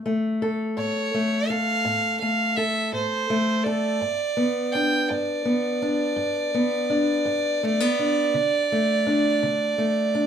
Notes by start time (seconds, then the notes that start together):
Already playing: A2
0.06 A3
0.42 A4
0.77 A2 C#5
1.14 A3
1.49 A4 F5
1.85 A2
2.20 A3 F5
2.57 A4 E5
2.92 A2 C5
3.30 A3
3.63 A4 D5
4.01 G2
4.37 B3
4.73 D4 G5
5.09 G2 D5
5.45 B3
5.82 D4
6.16 G2
6.54 B3
6.90 D4
7.25 G2
7.63 A3
7.80 B3
7.99 D4
8.34 D3
8.72 A3
9.07 D4
9.43 D3
9.78 A3
10.15 D4